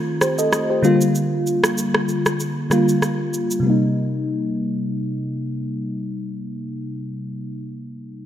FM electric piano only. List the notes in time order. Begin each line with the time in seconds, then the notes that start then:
Already playing: D#3 A3 C4 F4
0.21 G4 C5
0.39 A4 D#5
0.70 G4 C5
0.83 D3 G3 A#3 F4
2.70 D3 G3 A#3 F4
3.60 C3 G3
3.67 A#3 D#4